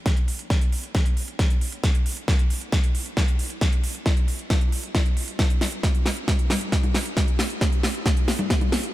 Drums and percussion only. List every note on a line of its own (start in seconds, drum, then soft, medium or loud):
0.06 kick loud
0.06 snare soft
0.06 closed hi-hat medium
0.17 closed hi-hat medium
0.28 open hi-hat loud
0.39 closed hi-hat medium
0.50 kick loud
0.50 snare medium
0.50 closed hi-hat medium
0.61 closed hi-hat medium
0.72 open hi-hat loud
0.84 closed hi-hat soft
0.95 kick loud
0.95 snare medium
0.95 closed hi-hat medium
1.06 closed hi-hat medium
1.17 open hi-hat loud
1.28 closed hi-hat medium
1.39 kick loud
1.39 snare medium
1.39 closed hi-hat medium
1.50 closed hi-hat soft
1.61 open hi-hat loud
1.72 closed hi-hat medium
1.84 kick loud
1.84 snare medium
1.84 closed hi-hat medium
1.95 closed hi-hat medium
2.06 open hi-hat loud
2.17 closed hi-hat soft
2.28 kick loud
2.28 snare medium
2.28 closed hi-hat medium
2.39 closed hi-hat soft
2.50 open hi-hat loud
2.61 closed hi-hat soft
2.72 kick loud
2.72 snare medium
2.72 closed hi-hat medium
2.84 closed hi-hat medium
2.95 open hi-hat loud
3.06 closed hi-hat medium
3.17 kick loud
3.17 snare medium
3.17 closed hi-hat medium
3.28 closed hi-hat soft
3.39 open hi-hat loud
3.50 closed hi-hat medium
3.61 kick loud
3.61 snare medium
3.61 closed hi-hat medium
3.73 closed hi-hat soft
3.84 open hi-hat loud
3.95 closed hi-hat soft
4.06 kick loud
4.06 snare medium
4.06 closed hi-hat medium
4.17 closed hi-hat soft
4.28 open hi-hat loud
4.39 closed hi-hat soft
4.50 kick loud
4.50 snare medium
4.50 closed hi-hat medium
4.61 closed hi-hat soft
4.72 open hi-hat loud
4.83 closed hi-hat soft
4.95 kick loud
4.95 snare medium
4.95 closed hi-hat medium
5.06 closed hi-hat soft
5.17 open hi-hat loud
5.28 closed hi-hat medium
5.39 kick loud
5.39 snare medium
5.39 closed hi-hat medium
5.50 closed hi-hat soft
5.61 snare medium
5.61 open hi-hat loud
5.72 closed hi-hat soft
5.83 kick loud
5.83 snare medium
5.83 closed hi-hat medium
5.95 closed hi-hat soft
6.06 snare medium
6.06 open hi-hat loud
6.17 closed hi-hat soft
6.28 kick loud
6.28 snare medium
6.28 closed hi-hat medium
6.39 closed hi-hat medium
6.50 snare medium
6.50 open hi-hat loud
6.50 high conga medium
6.61 closed hi-hat medium
6.72 kick loud
6.72 snare medium
6.72 closed hi-hat medium
6.83 closed hi-hat soft
6.83 high conga medium
6.94 snare medium
6.94 open hi-hat loud
7.06 closed hi-hat medium
7.17 kick loud
7.17 snare medium
7.17 closed hi-hat medium
7.28 closed hi-hat medium
7.39 snare medium
7.39 open hi-hat loud
7.50 closed hi-hat medium
7.61 kick loud
7.61 snare medium
7.61 closed hi-hat medium
7.72 closed hi-hat medium
7.83 snare medium
7.83 open hi-hat loud
7.95 closed hi-hat soft
8.06 kick loud
8.06 snare medium
8.06 closed hi-hat medium
8.17 closed hi-hat medium
8.28 snare medium
8.28 open hi-hat loud
8.39 closed hi-hat medium
8.39 high conga medium
8.50 kick loud
8.50 snare medium
8.50 closed hi-hat medium
8.61 closed hi-hat soft
8.61 high conga medium
8.72 snare medium
8.72 open hi-hat loud
8.84 closed hi-hat medium